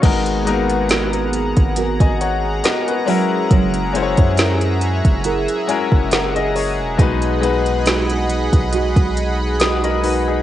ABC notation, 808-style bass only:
X:1
M:4/4
L:1/16
Q:"Swing 16ths" 1/4=69
K:G#m
V:1 name="808-style bass" clef=bass
G,,,6- G,,, G,,,2 G,,,3 z4 | F,,,3 F,,4 F,,,2 z2 F,,,4 E,,, | B,,,6- B,,, B,,,2 B,,,6- B,,, |]